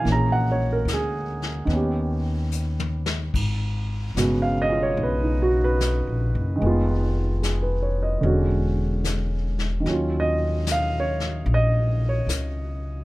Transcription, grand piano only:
0.01 1.66 E3 soft
0.01 1.68 A#3 soft
0.09 1.70 C#4 soft
0.09 0.92 G#4 soft
0.09 0.35 A#5 medium
0.32 0.59 F#5 medium
0.52 0.68 C#5 medium
0.73 0.85 A#4 medium
0.93 1.67 G#4 medium
1.65 3.31 D#3 soft
1.65 3.33 B3 soft
1.72 3.35 C#4 soft
1.72 3.37 G4 soft
4.16 6.61 C#3 soft
4.16 6.57 G#3 soft
4.16 6.61 B3 soft
4.16 5.41 F#4 soft
4.42 4.70 F5 medium
4.62 4.79 D#5 medium
4.69 6.60 C#4 soft
4.69 6.62 F4 soft
4.83 4.96 C#5 medium
5.03 5.27 B4 medium
5.24 5.51 D#4 soft
5.42 5.60 F#4 medium
5.64 6.83 B4 medium
6.56 8.21 D#3 soft
6.56 8.21 G#3 soft
6.63 8.24 B3 soft
6.63 8.26 F4 medium
7.42 7.81 G#4 soft
7.62 7.97 B4 soft
7.83 8.07 C#5 soft
8.03 8.31 D#5 soft
8.21 9.84 D3 soft
8.21 9.85 G#3 soft
8.21 9.85 C#4 soft
8.26 9.86 F#4 medium
9.80 13.04 D#3 soft
9.80 13.04 F#3 soft
9.88 13.04 C#4 soft
9.88 13.04 F4 soft
10.20 10.66 D#5 medium
10.72 10.95 F5 medium
11.00 11.46 C#5 medium
11.54 12.01 D#5 medium
12.09 13.04 C#5 medium

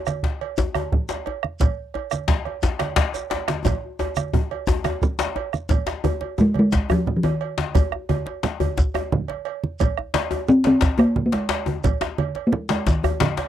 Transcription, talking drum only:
6.41 6.48 G#3 loud
6.59 6.89 G#3 loud
6.92 7.16 F3 loud
7.16 7.25 F3 medium
7.24 7.62 D#3 medium
10.49 10.64 C4 loud
10.67 10.98 C4 loud
10.99 11.26 A#3 loud
11.26 11.35 A#3 medium
11.34 11.72 G#3 medium
12.47 12.54 A#3 medium
12.52 12.69 G#3 medium
12.70 12.85 G#3 medium
12.88 13.48 D#3 medium

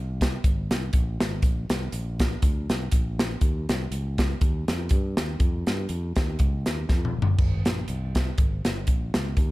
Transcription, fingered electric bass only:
0.00 0.36 C2 medium
0.44 0.67 G#1 medium
0.71 0.90 C2 medium
0.94 1.17 A#1 medium
1.21 1.40 G#1 medium
1.42 1.66 A#1 medium
1.70 1.89 C2 medium
1.93 2.35 A#1 medium
2.42 2.66 D2 medium
2.70 2.89 C2 medium
2.93 3.35 A#1 medium
3.41 3.65 D#2 medium
3.69 3.88 C2 medium
3.91 4.33 C#2 medium
4.41 4.65 D#2 medium
4.68 4.87 F2 medium
4.91 5.14 G2 medium
5.18 5.37 D#2 medium
5.40 5.63 F2 medium
5.67 5.86 G2 medium
5.89 6.13 F2 medium
6.17 6.36 D#2 medium
6.40 6.63 C#2 loud
6.67 6.86 D#2 medium
6.89 7.13 F2 medium
7.17 7.35 G1 medium
7.39 7.62 G#1 medium
7.66 7.85 A#1 medium
7.88 8.31 C2 medium
8.38 8.61 G#1 medium
8.66 8.84 G1 medium
8.87 9.11 A#1 medium
9.15 9.34 C#2 medium
9.37 9.52 D#2 medium

